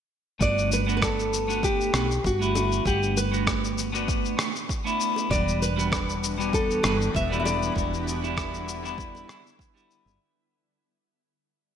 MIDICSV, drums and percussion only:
0, 0, Header, 1, 2, 480
1, 0, Start_track
1, 0, Key_signature, 1, "major"
1, 0, Tempo, 612245
1, 324, Time_signature, 4, 2, 24, 8
1, 9214, End_track
2, 0, Start_track
2, 0, Title_t, "Drums"
2, 319, Note_on_c, 9, 36, 91
2, 324, Note_on_c, 9, 82, 37
2, 397, Note_off_c, 9, 36, 0
2, 402, Note_off_c, 9, 82, 0
2, 457, Note_on_c, 9, 82, 27
2, 535, Note_off_c, 9, 82, 0
2, 564, Note_on_c, 9, 82, 65
2, 643, Note_off_c, 9, 82, 0
2, 698, Note_on_c, 9, 82, 28
2, 777, Note_off_c, 9, 82, 0
2, 798, Note_on_c, 9, 36, 88
2, 803, Note_on_c, 9, 37, 70
2, 809, Note_on_c, 9, 82, 40
2, 876, Note_off_c, 9, 36, 0
2, 881, Note_off_c, 9, 37, 0
2, 888, Note_off_c, 9, 82, 0
2, 937, Note_on_c, 9, 82, 28
2, 1015, Note_off_c, 9, 82, 0
2, 1048, Note_on_c, 9, 82, 74
2, 1127, Note_off_c, 9, 82, 0
2, 1175, Note_on_c, 9, 82, 28
2, 1254, Note_off_c, 9, 82, 0
2, 1279, Note_on_c, 9, 36, 88
2, 1285, Note_on_c, 9, 82, 39
2, 1357, Note_off_c, 9, 36, 0
2, 1364, Note_off_c, 9, 82, 0
2, 1418, Note_on_c, 9, 82, 26
2, 1496, Note_off_c, 9, 82, 0
2, 1519, Note_on_c, 9, 37, 72
2, 1519, Note_on_c, 9, 60, 56
2, 1526, Note_on_c, 9, 82, 69
2, 1597, Note_off_c, 9, 37, 0
2, 1597, Note_off_c, 9, 60, 0
2, 1604, Note_off_c, 9, 82, 0
2, 1656, Note_on_c, 9, 82, 29
2, 1735, Note_off_c, 9, 82, 0
2, 1760, Note_on_c, 9, 36, 94
2, 1771, Note_on_c, 9, 82, 38
2, 1838, Note_off_c, 9, 36, 0
2, 1849, Note_off_c, 9, 82, 0
2, 1897, Note_on_c, 9, 82, 27
2, 1975, Note_off_c, 9, 82, 0
2, 2002, Note_on_c, 9, 60, 61
2, 2007, Note_on_c, 9, 82, 62
2, 2081, Note_off_c, 9, 60, 0
2, 2085, Note_off_c, 9, 82, 0
2, 2134, Note_on_c, 9, 82, 30
2, 2212, Note_off_c, 9, 82, 0
2, 2239, Note_on_c, 9, 36, 100
2, 2246, Note_on_c, 9, 82, 39
2, 2317, Note_off_c, 9, 36, 0
2, 2324, Note_off_c, 9, 82, 0
2, 2375, Note_on_c, 9, 82, 30
2, 2453, Note_off_c, 9, 82, 0
2, 2487, Note_on_c, 9, 82, 74
2, 2566, Note_off_c, 9, 82, 0
2, 2616, Note_on_c, 9, 82, 30
2, 2695, Note_off_c, 9, 82, 0
2, 2720, Note_on_c, 9, 36, 100
2, 2723, Note_on_c, 9, 37, 74
2, 2730, Note_on_c, 9, 82, 41
2, 2798, Note_off_c, 9, 36, 0
2, 2801, Note_off_c, 9, 37, 0
2, 2808, Note_off_c, 9, 82, 0
2, 2858, Note_on_c, 9, 82, 31
2, 2937, Note_off_c, 9, 82, 0
2, 2965, Note_on_c, 9, 82, 75
2, 3043, Note_off_c, 9, 82, 0
2, 3097, Note_on_c, 9, 82, 32
2, 3175, Note_off_c, 9, 82, 0
2, 3201, Note_on_c, 9, 36, 104
2, 3206, Note_on_c, 9, 82, 41
2, 3279, Note_off_c, 9, 36, 0
2, 3284, Note_off_c, 9, 82, 0
2, 3333, Note_on_c, 9, 82, 27
2, 3411, Note_off_c, 9, 82, 0
2, 3440, Note_on_c, 9, 37, 79
2, 3447, Note_on_c, 9, 82, 77
2, 3518, Note_off_c, 9, 37, 0
2, 3525, Note_off_c, 9, 82, 0
2, 3574, Note_on_c, 9, 82, 33
2, 3652, Note_off_c, 9, 82, 0
2, 3680, Note_on_c, 9, 36, 102
2, 3688, Note_on_c, 9, 82, 39
2, 3758, Note_off_c, 9, 36, 0
2, 3766, Note_off_c, 9, 82, 0
2, 3815, Note_on_c, 9, 82, 27
2, 3894, Note_off_c, 9, 82, 0
2, 3925, Note_on_c, 9, 82, 67
2, 4003, Note_off_c, 9, 82, 0
2, 4047, Note_on_c, 9, 60, 37
2, 4061, Note_on_c, 9, 82, 33
2, 4126, Note_off_c, 9, 60, 0
2, 4140, Note_off_c, 9, 82, 0
2, 4160, Note_on_c, 9, 36, 103
2, 4173, Note_on_c, 9, 82, 41
2, 4239, Note_off_c, 9, 36, 0
2, 4251, Note_off_c, 9, 82, 0
2, 4300, Note_on_c, 9, 82, 32
2, 4379, Note_off_c, 9, 82, 0
2, 4411, Note_on_c, 9, 82, 75
2, 4489, Note_off_c, 9, 82, 0
2, 4541, Note_on_c, 9, 82, 30
2, 4620, Note_off_c, 9, 82, 0
2, 4640, Note_on_c, 9, 36, 106
2, 4646, Note_on_c, 9, 37, 70
2, 4653, Note_on_c, 9, 82, 42
2, 4719, Note_off_c, 9, 36, 0
2, 4724, Note_off_c, 9, 37, 0
2, 4731, Note_off_c, 9, 82, 0
2, 4779, Note_on_c, 9, 82, 31
2, 4858, Note_off_c, 9, 82, 0
2, 4891, Note_on_c, 9, 82, 76
2, 4970, Note_off_c, 9, 82, 0
2, 5022, Note_on_c, 9, 82, 32
2, 5100, Note_off_c, 9, 82, 0
2, 5121, Note_on_c, 9, 36, 102
2, 5130, Note_on_c, 9, 82, 44
2, 5200, Note_off_c, 9, 36, 0
2, 5209, Note_off_c, 9, 82, 0
2, 5258, Note_on_c, 9, 82, 29
2, 5337, Note_off_c, 9, 82, 0
2, 5359, Note_on_c, 9, 60, 63
2, 5362, Note_on_c, 9, 37, 79
2, 5369, Note_on_c, 9, 82, 74
2, 5437, Note_off_c, 9, 60, 0
2, 5441, Note_off_c, 9, 37, 0
2, 5447, Note_off_c, 9, 82, 0
2, 5499, Note_on_c, 9, 82, 30
2, 5577, Note_off_c, 9, 82, 0
2, 5602, Note_on_c, 9, 36, 97
2, 5612, Note_on_c, 9, 82, 43
2, 5681, Note_off_c, 9, 36, 0
2, 5691, Note_off_c, 9, 82, 0
2, 5743, Note_on_c, 9, 82, 29
2, 5822, Note_off_c, 9, 82, 0
2, 5848, Note_on_c, 9, 60, 62
2, 5855, Note_on_c, 9, 82, 68
2, 5926, Note_off_c, 9, 60, 0
2, 5933, Note_off_c, 9, 82, 0
2, 5981, Note_on_c, 9, 82, 36
2, 6059, Note_off_c, 9, 82, 0
2, 6082, Note_on_c, 9, 36, 105
2, 6097, Note_on_c, 9, 82, 43
2, 6160, Note_off_c, 9, 36, 0
2, 6175, Note_off_c, 9, 82, 0
2, 6223, Note_on_c, 9, 82, 33
2, 6302, Note_off_c, 9, 82, 0
2, 6334, Note_on_c, 9, 82, 77
2, 6412, Note_off_c, 9, 82, 0
2, 6462, Note_on_c, 9, 82, 32
2, 6540, Note_off_c, 9, 82, 0
2, 6561, Note_on_c, 9, 36, 103
2, 6566, Note_on_c, 9, 37, 70
2, 6573, Note_on_c, 9, 82, 41
2, 6640, Note_off_c, 9, 36, 0
2, 6645, Note_off_c, 9, 37, 0
2, 6651, Note_off_c, 9, 82, 0
2, 6698, Note_on_c, 9, 82, 30
2, 6777, Note_off_c, 9, 82, 0
2, 6810, Note_on_c, 9, 82, 84
2, 6889, Note_off_c, 9, 82, 0
2, 6941, Note_on_c, 9, 82, 31
2, 7019, Note_off_c, 9, 82, 0
2, 7040, Note_on_c, 9, 36, 100
2, 7055, Note_on_c, 9, 82, 44
2, 7119, Note_off_c, 9, 36, 0
2, 7133, Note_off_c, 9, 82, 0
2, 7173, Note_on_c, 9, 60, 34
2, 7182, Note_on_c, 9, 82, 27
2, 7251, Note_off_c, 9, 60, 0
2, 7261, Note_off_c, 9, 82, 0
2, 7286, Note_on_c, 9, 37, 69
2, 7292, Note_on_c, 9, 82, 76
2, 7364, Note_off_c, 9, 37, 0
2, 7370, Note_off_c, 9, 82, 0
2, 7422, Note_on_c, 9, 82, 35
2, 7500, Note_off_c, 9, 82, 0
2, 7519, Note_on_c, 9, 36, 101
2, 7534, Note_on_c, 9, 82, 43
2, 7598, Note_off_c, 9, 36, 0
2, 7612, Note_off_c, 9, 82, 0
2, 7660, Note_on_c, 9, 82, 30
2, 7738, Note_off_c, 9, 82, 0
2, 7770, Note_on_c, 9, 82, 67
2, 7848, Note_off_c, 9, 82, 0
2, 7897, Note_on_c, 9, 60, 38
2, 7902, Note_on_c, 9, 82, 33
2, 7975, Note_off_c, 9, 60, 0
2, 7980, Note_off_c, 9, 82, 0
2, 9214, End_track
0, 0, End_of_file